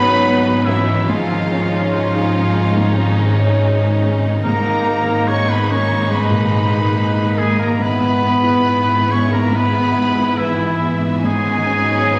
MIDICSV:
0, 0, Header, 1, 11, 480
1, 0, Start_track
1, 0, Key_signature, 5, "minor"
1, 0, Tempo, 839161
1, 619, Time_signature, 4, 2, 24, 8
1, 3974, Tempo, 858369
1, 6908, End_track
2, 0, Start_track
2, 0, Title_t, "Violin section"
2, 0, Program_c, 0, 48
2, 0, Note_on_c, 0, 83, 113
2, 381, Note_off_c, 0, 83, 0
2, 387, Note_on_c, 0, 76, 90
2, 615, Note_on_c, 0, 77, 78
2, 617, Note_off_c, 0, 76, 0
2, 1089, Note_off_c, 0, 77, 0
2, 1102, Note_on_c, 0, 77, 81
2, 1797, Note_off_c, 0, 77, 0
2, 2538, Note_on_c, 0, 82, 93
2, 2996, Note_off_c, 0, 82, 0
2, 3022, Note_on_c, 0, 85, 94
2, 3139, Note_off_c, 0, 85, 0
2, 3154, Note_on_c, 0, 83, 87
2, 3266, Note_off_c, 0, 83, 0
2, 3272, Note_on_c, 0, 85, 90
2, 3499, Note_off_c, 0, 85, 0
2, 3511, Note_on_c, 0, 83, 81
2, 4221, Note_on_c, 0, 80, 82
2, 4223, Note_off_c, 0, 83, 0
2, 4339, Note_off_c, 0, 80, 0
2, 4346, Note_on_c, 0, 82, 81
2, 4460, Note_on_c, 0, 83, 93
2, 4462, Note_off_c, 0, 82, 0
2, 5165, Note_off_c, 0, 83, 0
2, 5185, Note_on_c, 0, 85, 86
2, 5301, Note_off_c, 0, 85, 0
2, 5305, Note_on_c, 0, 82, 79
2, 5421, Note_off_c, 0, 82, 0
2, 5423, Note_on_c, 0, 83, 92
2, 5896, Note_on_c, 0, 76, 76
2, 5900, Note_off_c, 0, 83, 0
2, 6368, Note_off_c, 0, 76, 0
2, 6376, Note_on_c, 0, 80, 95
2, 6908, Note_off_c, 0, 80, 0
2, 6908, End_track
3, 0, Start_track
3, 0, Title_t, "Oboe"
3, 0, Program_c, 1, 68
3, 0, Note_on_c, 1, 71, 94
3, 374, Note_on_c, 1, 64, 73
3, 383, Note_off_c, 1, 71, 0
3, 614, Note_off_c, 1, 64, 0
3, 618, Note_on_c, 1, 65, 65
3, 1081, Note_off_c, 1, 65, 0
3, 1095, Note_on_c, 1, 65, 75
3, 1793, Note_off_c, 1, 65, 0
3, 2536, Note_on_c, 1, 70, 86
3, 3017, Note_on_c, 1, 73, 80
3, 3026, Note_off_c, 1, 70, 0
3, 3141, Note_on_c, 1, 71, 75
3, 3150, Note_off_c, 1, 73, 0
3, 3268, Note_on_c, 1, 73, 72
3, 3276, Note_off_c, 1, 71, 0
3, 3498, Note_on_c, 1, 71, 74
3, 3506, Note_off_c, 1, 73, 0
3, 4216, Note_on_c, 1, 68, 74
3, 4224, Note_off_c, 1, 71, 0
3, 4332, Note_off_c, 1, 68, 0
3, 4336, Note_on_c, 1, 70, 64
3, 4460, Note_on_c, 1, 71, 86
3, 4469, Note_off_c, 1, 70, 0
3, 5188, Note_on_c, 1, 73, 69
3, 5196, Note_off_c, 1, 71, 0
3, 5302, Note_off_c, 1, 73, 0
3, 5305, Note_on_c, 1, 70, 71
3, 5429, Note_on_c, 1, 71, 85
3, 5437, Note_off_c, 1, 70, 0
3, 5894, Note_on_c, 1, 64, 69
3, 5903, Note_off_c, 1, 71, 0
3, 6222, Note_off_c, 1, 64, 0
3, 6382, Note_on_c, 1, 68, 81
3, 6908, Note_off_c, 1, 68, 0
3, 6908, End_track
4, 0, Start_track
4, 0, Title_t, "Violin section"
4, 0, Program_c, 2, 48
4, 0, Note_on_c, 2, 61, 68
4, 0, Note_on_c, 2, 63, 76
4, 596, Note_off_c, 2, 63, 0
4, 618, Note_off_c, 2, 61, 0
4, 624, Note_on_c, 2, 63, 70
4, 626, Note_on_c, 2, 61, 68
4, 2515, Note_off_c, 2, 63, 0
4, 2516, Note_off_c, 2, 61, 0
4, 2533, Note_on_c, 2, 63, 67
4, 2541, Note_on_c, 2, 58, 67
4, 4434, Note_off_c, 2, 63, 0
4, 4438, Note_off_c, 2, 58, 0
4, 4459, Note_on_c, 2, 59, 68
4, 4459, Note_on_c, 2, 64, 64
4, 6356, Note_off_c, 2, 64, 0
4, 6379, Note_off_c, 2, 59, 0
4, 6386, Note_on_c, 2, 63, 57
4, 6389, Note_on_c, 2, 61, 63
4, 6908, Note_off_c, 2, 61, 0
4, 6908, Note_off_c, 2, 63, 0
4, 6908, End_track
5, 0, Start_track
5, 0, Title_t, "Felt piano"
5, 0, Program_c, 3, 0
5, 0, Control_c, 3, 64, 127
5, 0, Note_on_c, 3, 44, 61
5, 0, Note_on_c, 3, 51, 49
5, 0, Note_on_c, 3, 61, 50
5, 0, Note_on_c, 3, 63, 57
5, 0, Note_on_c, 3, 66, 54
5, 25, Note_off_c, 3, 63, 0
5, 25, Note_on_c, 3, 63, 48
5, 95, Note_off_c, 3, 51, 0
5, 142, Note_off_c, 3, 66, 0
5, 142, Note_on_c, 3, 66, 56
5, 215, Note_off_c, 3, 63, 0
5, 262, Note_on_c, 3, 63, 52
5, 334, Note_off_c, 3, 66, 0
5, 383, Note_off_c, 3, 61, 0
5, 383, Note_on_c, 3, 61, 53
5, 454, Note_off_c, 3, 63, 0
5, 512, Note_on_c, 3, 51, 47
5, 573, Note_off_c, 3, 61, 0
5, 596, Note_off_c, 3, 44, 0
5, 625, Note_off_c, 3, 51, 0
5, 625, Note_on_c, 3, 44, 62
5, 629, Control_c, 3, 64, 0
5, 711, Control_c, 3, 64, 127
5, 749, Note_on_c, 3, 51, 51
5, 869, Note_on_c, 3, 61, 52
5, 931, Note_off_c, 3, 51, 0
5, 983, Note_on_c, 3, 63, 48
5, 1051, Note_off_c, 3, 61, 0
5, 1107, Note_on_c, 3, 68, 57
5, 1168, Note_off_c, 3, 63, 0
5, 1229, Note_on_c, 3, 63, 54
5, 1290, Note_off_c, 3, 68, 0
5, 1344, Note_on_c, 3, 61, 50
5, 1411, Note_off_c, 3, 63, 0
5, 1465, Note_on_c, 3, 51, 45
5, 1528, Note_off_c, 3, 61, 0
5, 1548, Note_off_c, 3, 44, 0
5, 1582, Note_on_c, 3, 44, 58
5, 1647, Note_off_c, 3, 51, 0
5, 1696, Note_on_c, 3, 61, 47
5, 1823, Note_on_c, 3, 51, 47
5, 1881, Note_off_c, 3, 61, 0
5, 1939, Note_on_c, 3, 63, 46
5, 2005, Note_off_c, 3, 51, 0
5, 2058, Note_on_c, 3, 68, 53
5, 2124, Note_off_c, 3, 63, 0
5, 2185, Note_on_c, 3, 63, 51
5, 2246, Note_off_c, 3, 68, 0
5, 2304, Note_on_c, 3, 61, 47
5, 2372, Note_off_c, 3, 63, 0
5, 2421, Note_on_c, 3, 51, 51
5, 2494, Note_off_c, 3, 61, 0
5, 2519, Note_off_c, 3, 44, 0
5, 2540, Note_off_c, 3, 51, 0
5, 2546, Control_c, 3, 64, 0
5, 2546, Note_on_c, 3, 44, 66
5, 2638, Control_c, 3, 64, 127
5, 2669, Note_on_c, 3, 51, 48
5, 2787, Note_on_c, 3, 58, 50
5, 2856, Note_off_c, 3, 51, 0
5, 2909, Note_on_c, 3, 63, 46
5, 2974, Note_off_c, 3, 58, 0
5, 3023, Note_on_c, 3, 68, 50
5, 3095, Note_off_c, 3, 63, 0
5, 3146, Note_on_c, 3, 63, 54
5, 3212, Note_off_c, 3, 68, 0
5, 3261, Note_on_c, 3, 58, 47
5, 3334, Note_off_c, 3, 63, 0
5, 3376, Note_on_c, 3, 51, 46
5, 3451, Note_off_c, 3, 58, 0
5, 3479, Note_off_c, 3, 44, 0
5, 3493, Note_on_c, 3, 44, 53
5, 3567, Note_off_c, 3, 51, 0
5, 3605, Note_on_c, 3, 46, 49
5, 3721, Note_on_c, 3, 51, 45
5, 3801, Note_off_c, 3, 46, 0
5, 3845, Note_on_c, 3, 63, 46
5, 3921, Note_off_c, 3, 51, 0
5, 3955, Note_on_c, 3, 68, 53
5, 4043, Note_off_c, 3, 63, 0
5, 4077, Note_on_c, 3, 63, 49
5, 4157, Note_off_c, 3, 68, 0
5, 4197, Note_on_c, 3, 58, 52
5, 4279, Note_off_c, 3, 63, 0
5, 4324, Note_on_c, 3, 51, 42
5, 4400, Note_off_c, 3, 58, 0
5, 4433, Note_off_c, 3, 44, 0
5, 4446, Note_on_c, 3, 44, 63
5, 4451, Note_off_c, 3, 51, 0
5, 4467, Control_c, 3, 64, 0
5, 4542, Control_c, 3, 64, 127
5, 4568, Note_on_c, 3, 56, 49
5, 4687, Note_on_c, 3, 59, 51
5, 4766, Note_off_c, 3, 56, 0
5, 4805, Note_on_c, 3, 64, 44
5, 4886, Note_off_c, 3, 59, 0
5, 4933, Note_on_c, 3, 71, 48
5, 5004, Note_off_c, 3, 64, 0
5, 5056, Note_on_c, 3, 64, 46
5, 5128, Note_off_c, 3, 71, 0
5, 5175, Note_on_c, 3, 59, 45
5, 5249, Note_off_c, 3, 64, 0
5, 5295, Note_on_c, 3, 56, 44
5, 5367, Note_off_c, 3, 59, 0
5, 5389, Note_off_c, 3, 44, 0
5, 5411, Note_on_c, 3, 44, 50
5, 5487, Note_off_c, 3, 56, 0
5, 5531, Note_on_c, 3, 59, 44
5, 5642, Note_on_c, 3, 56, 45
5, 5726, Note_off_c, 3, 59, 0
5, 5766, Note_on_c, 3, 64, 44
5, 5841, Note_off_c, 3, 56, 0
5, 5889, Note_on_c, 3, 71, 51
5, 5964, Note_off_c, 3, 64, 0
5, 6005, Note_on_c, 3, 64, 43
5, 6085, Note_off_c, 3, 71, 0
5, 6129, Note_on_c, 3, 59, 45
5, 6203, Note_off_c, 3, 64, 0
5, 6244, Note_on_c, 3, 56, 43
5, 6326, Note_off_c, 3, 59, 0
5, 6353, Note_off_c, 3, 44, 0
5, 6371, Note_off_c, 3, 56, 0
5, 6371, Note_on_c, 3, 44, 57
5, 6389, Control_c, 3, 64, 0
5, 6474, Control_c, 3, 64, 127
5, 6491, Note_on_c, 3, 51, 39
5, 6611, Note_on_c, 3, 61, 41
5, 6686, Note_off_c, 3, 51, 0
5, 6737, Note_on_c, 3, 63, 39
5, 6805, Note_off_c, 3, 61, 0
5, 6853, Note_on_c, 3, 71, 46
5, 6908, Note_off_c, 3, 44, 0
5, 6908, Note_off_c, 3, 63, 0
5, 6908, Note_off_c, 3, 71, 0
5, 6908, End_track
6, 0, Start_track
6, 0, Title_t, "Harp"
6, 0, Program_c, 4, 46
6, 0, Note_on_c, 4, 44, 57
6, 0, Note_on_c, 4, 49, 53
6, 0, Note_on_c, 4, 54, 55
6, 0, Note_on_c, 4, 59, 61
6, 0, Note_on_c, 4, 61, 60
6, 0, Note_on_c, 4, 66, 53
6, 264, Note_off_c, 4, 59, 0
6, 301, Note_off_c, 4, 66, 0
6, 308, Note_on_c, 4, 66, 57
6, 466, Note_on_c, 4, 63, 49
6, 617, Note_off_c, 4, 44, 0
6, 624, Note_on_c, 4, 44, 64
6, 641, Note_off_c, 4, 49, 0
6, 641, Note_off_c, 4, 54, 0
6, 642, Note_off_c, 4, 66, 0
6, 783, Note_on_c, 4, 51, 53
6, 929, Note_off_c, 4, 61, 0
6, 936, Note_on_c, 4, 61, 47
6, 1088, Note_off_c, 4, 63, 0
6, 1095, Note_on_c, 4, 63, 50
6, 1255, Note_on_c, 4, 68, 51
6, 1404, Note_off_c, 4, 63, 0
6, 1411, Note_on_c, 4, 63, 55
6, 1565, Note_off_c, 4, 44, 0
6, 1572, Note_on_c, 4, 44, 56
6, 1724, Note_off_c, 4, 51, 0
6, 1731, Note_on_c, 4, 51, 50
6, 1890, Note_off_c, 4, 61, 0
6, 1897, Note_on_c, 4, 61, 58
6, 2046, Note_off_c, 4, 63, 0
6, 2053, Note_on_c, 4, 63, 61
6, 2209, Note_off_c, 4, 68, 0
6, 2216, Note_on_c, 4, 68, 56
6, 2373, Note_off_c, 4, 63, 0
6, 2380, Note_on_c, 4, 63, 52
6, 2536, Note_off_c, 4, 44, 0
6, 2543, Note_on_c, 4, 44, 66
6, 2557, Note_off_c, 4, 51, 0
6, 2561, Note_off_c, 4, 61, 0
6, 2706, Note_on_c, 4, 51, 51
6, 2866, Note_on_c, 4, 56, 52
6, 3017, Note_off_c, 4, 63, 0
6, 3024, Note_on_c, 4, 63, 50
6, 3176, Note_off_c, 4, 68, 0
6, 3183, Note_on_c, 4, 68, 51
6, 3335, Note_off_c, 4, 63, 0
6, 3341, Note_on_c, 4, 63, 52
6, 3493, Note_off_c, 4, 44, 0
6, 3500, Note_on_c, 4, 44, 55
6, 3654, Note_off_c, 4, 51, 0
6, 3661, Note_on_c, 4, 51, 50
6, 3972, Note_off_c, 4, 63, 0
6, 3979, Note_on_c, 4, 63, 55
6, 4132, Note_off_c, 4, 68, 0
6, 4139, Note_on_c, 4, 68, 52
6, 4292, Note_off_c, 4, 63, 0
6, 4299, Note_on_c, 4, 63, 47
6, 4452, Note_off_c, 4, 44, 0
6, 4459, Note_on_c, 4, 44, 63
6, 4478, Note_off_c, 4, 63, 0
6, 4479, Note_off_c, 4, 51, 0
6, 4481, Note_off_c, 4, 56, 0
6, 4617, Note_on_c, 4, 56, 49
6, 4773, Note_on_c, 4, 59, 49
6, 4935, Note_on_c, 4, 64, 51
6, 5248, Note_off_c, 4, 64, 0
6, 5254, Note_on_c, 4, 64, 48
6, 5409, Note_off_c, 4, 44, 0
6, 5415, Note_on_c, 4, 44, 54
6, 5570, Note_off_c, 4, 56, 0
6, 5577, Note_on_c, 4, 56, 48
6, 5732, Note_off_c, 4, 59, 0
6, 5739, Note_on_c, 4, 59, 47
6, 5894, Note_off_c, 4, 64, 0
6, 5901, Note_on_c, 4, 64, 50
6, 6211, Note_off_c, 4, 64, 0
6, 6217, Note_on_c, 4, 64, 43
6, 6320, Note_off_c, 4, 68, 0
6, 6376, Note_off_c, 4, 44, 0
6, 6382, Note_on_c, 4, 44, 57
6, 6397, Note_off_c, 4, 56, 0
6, 6397, Note_off_c, 4, 64, 0
6, 6543, Note_on_c, 4, 51, 47
6, 6704, Note_on_c, 4, 61, 42
6, 6863, Note_on_c, 4, 63, 43
6, 6908, Note_off_c, 4, 44, 0
6, 6908, Note_off_c, 4, 51, 0
6, 6908, Note_off_c, 4, 59, 0
6, 6908, Note_off_c, 4, 61, 0
6, 6908, Note_off_c, 4, 63, 0
6, 6908, End_track
7, 0, Start_track
7, 0, Title_t, "French horn section"
7, 0, Program_c, 5, 60
7, 0, Note_on_c, 5, 59, 84
7, 382, Note_off_c, 5, 59, 0
7, 392, Note_on_c, 5, 52, 73
7, 622, Note_on_c, 5, 53, 68
7, 625, Note_off_c, 5, 52, 0
7, 1083, Note_off_c, 5, 53, 0
7, 1110, Note_on_c, 5, 53, 70
7, 1801, Note_off_c, 5, 53, 0
7, 2535, Note_on_c, 5, 58, 80
7, 2994, Note_off_c, 5, 58, 0
7, 3016, Note_on_c, 5, 61, 83
7, 3122, Note_on_c, 5, 59, 71
7, 3137, Note_off_c, 5, 61, 0
7, 3250, Note_off_c, 5, 59, 0
7, 3250, Note_on_c, 5, 61, 84
7, 3490, Note_on_c, 5, 56, 70
7, 3493, Note_off_c, 5, 61, 0
7, 4212, Note_off_c, 5, 56, 0
7, 4219, Note_on_c, 5, 56, 74
7, 4330, Note_on_c, 5, 58, 74
7, 4338, Note_off_c, 5, 56, 0
7, 4446, Note_on_c, 5, 59, 84
7, 4454, Note_off_c, 5, 58, 0
7, 5165, Note_on_c, 5, 61, 76
7, 5173, Note_off_c, 5, 59, 0
7, 5288, Note_off_c, 5, 61, 0
7, 5288, Note_on_c, 5, 58, 67
7, 5412, Note_off_c, 5, 58, 0
7, 5425, Note_on_c, 5, 59, 74
7, 5891, Note_off_c, 5, 59, 0
7, 5906, Note_on_c, 5, 52, 70
7, 6381, Note_on_c, 5, 56, 72
7, 6382, Note_off_c, 5, 52, 0
7, 6908, Note_off_c, 5, 56, 0
7, 6908, End_track
8, 0, Start_track
8, 0, Title_t, "Viola section"
8, 0, Program_c, 6, 48
8, 0, Note_on_c, 6, 54, 68
8, 0, Note_on_c, 6, 59, 70
8, 597, Note_off_c, 6, 54, 0
8, 598, Note_off_c, 6, 59, 0
8, 626, Note_on_c, 6, 56, 62
8, 627, Note_off_c, 6, 56, 0
8, 627, Note_on_c, 6, 56, 70
8, 2516, Note_off_c, 6, 56, 0
8, 2540, Note_on_c, 6, 56, 54
8, 2541, Note_off_c, 6, 56, 0
8, 2541, Note_on_c, 6, 56, 69
8, 4438, Note_off_c, 6, 56, 0
8, 4461, Note_on_c, 6, 56, 55
8, 4464, Note_off_c, 6, 56, 0
8, 4464, Note_on_c, 6, 56, 67
8, 6359, Note_off_c, 6, 56, 0
8, 6386, Note_on_c, 6, 54, 56
8, 6386, Note_on_c, 6, 59, 61
8, 6908, Note_off_c, 6, 54, 0
8, 6908, Note_off_c, 6, 59, 0
8, 6908, End_track
9, 0, Start_track
9, 0, Title_t, "Cello section"
9, 0, Program_c, 7, 48
9, 0, Note_on_c, 7, 44, 74
9, 598, Note_off_c, 7, 44, 0
9, 622, Note_on_c, 7, 44, 70
9, 2514, Note_off_c, 7, 44, 0
9, 2537, Note_on_c, 7, 44, 68
9, 4436, Note_off_c, 7, 44, 0
9, 4461, Note_on_c, 7, 44, 65
9, 6357, Note_off_c, 7, 44, 0
9, 6384, Note_on_c, 7, 44, 57
9, 6908, Note_off_c, 7, 44, 0
9, 6908, End_track
10, 0, Start_track
10, 0, Title_t, "Timpani"
10, 0, Program_c, 8, 47
10, 2541, Note_on_c, 8, 44, 75
10, 3237, Note_off_c, 8, 44, 0
10, 6908, End_track
11, 0, Start_track
11, 0, Title_t, "Double bass section"
11, 0, Program_c, 10, 48
11, 0, Note_on_c, 10, 32, 82
11, 596, Note_off_c, 10, 32, 0
11, 627, Note_on_c, 10, 32, 84
11, 2516, Note_off_c, 10, 32, 0
11, 2540, Note_on_c, 10, 32, 81
11, 4437, Note_off_c, 10, 32, 0
11, 4457, Note_on_c, 10, 32, 73
11, 6355, Note_off_c, 10, 32, 0
11, 6382, Note_on_c, 10, 32, 64
11, 6908, Note_off_c, 10, 32, 0
11, 6908, End_track
0, 0, End_of_file